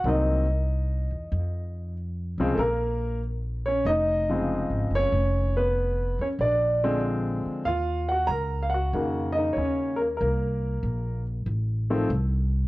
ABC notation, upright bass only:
X:1
M:4/4
L:1/8
Q:"Swing" 1/4=95
K:Bbm
V:1 name="Upright bass" clef=bass
C,,3 =E,, F,,3 C,, | B,,,4 F,,,2- (3F,,, A,,, G,,, | F,,,3 F,, B,,,3 z | E,,2 D,,2 F,,2 E,,2 |
C,,2 B,,,2 =A,,,2 C,,2 |]